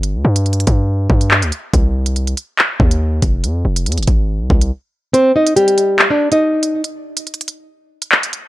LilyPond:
<<
  \new Staff \with { instrumentName = "Nylon-string guitar" } { \time 4/4 \key c \minor \tempo 4 = 141 r1 | r1 | r1 | <c' c''>8 <ees' ees''>8 <g g'>4~ <g g'>16 <d' d''>8 <ees' ees''>4~ <ees' ees''>16 |
r1 | }
  \new Staff \with { instrumentName = "808-style bass" } { \clef bass \time 4/4 \key c \minor g,,16 d,16 g,4 g,4 g,8. d,16 r8 | c,4. r4 ees,4 f,,8 | f,8 f,,8 f,16 f,,16 aes,,8. c,16 c,8 r4 | r1 |
r1 | }
  \new DrumStaff \with { instrumentName = "Drums" } \drummode { \time 4/4 hh8. hh16 \tuplet 3/2 { hh16 hh16 hh16 <hh bd>16 r16 r16 } r8 bd16 hh16 hc16 hh16 hh8 | <hh bd>8. hh16 hh16 hh16 hh8 hc8 bd16 hh16 r8 <hh bd>8 | hh8. hh16 hh32 hh32 hh32 hh32 <hh bd>8 r8 bd16 hh16 r4 | hh8. hh16 hh16 hh16 hh8 hc8. hh16 r8 hh8 |
hh8. hh16 \tuplet 3/2 { hh16 hh16 hh16 hh16 r16 r16 } r8. hh16 hc16 hh16 hh8 | }
>>